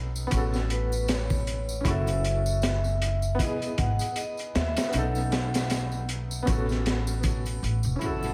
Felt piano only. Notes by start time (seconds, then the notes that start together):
Already playing: B3 C#4 D#4 A4
0.27 B3 C#4
0.33 F#4 A4
1.81 C#4 E4
1.87 F#4 A4
3.35 B3
3.41 E4 G#4
4.88 B3 C#4
4.95 D#4 A4
6.42 B3 C#4
6.49 F#4 A4
7.96 C#4 E4
8.02 F#4 A4